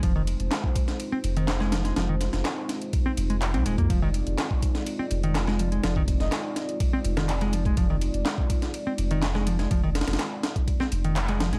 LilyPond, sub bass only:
\new Staff \with { instrumentName = "Sub bass" } { \clef bass \time 4/4 \key f \dorian \tempo 4 = 124 f,,8. f,,16 r4. f,,4. | f,,8. f,,16 r4. f,,8. c,16 ees,,16 f,16 | f,,8. f,,16 r4. f,,4. | f,,8. f,,16 r4. f,,4. |
f,,8. f,,16 r4. f,,4. | f,,8. f,,16 r4. f,,4~ f,,16 ees,,16 | }